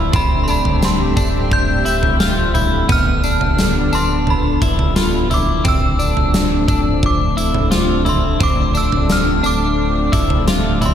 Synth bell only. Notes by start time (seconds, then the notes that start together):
0.16 B5
0.44 C6
0.50 B5
0.85 C6
1.53 G6
2.92 F6
3.95 C6
4.30 B5
5.34 D6
5.68 E6
7.06 D6
8.09 C6
8.43 D6
8.77 E6
9.12 F6
9.46 D6
10.86 C6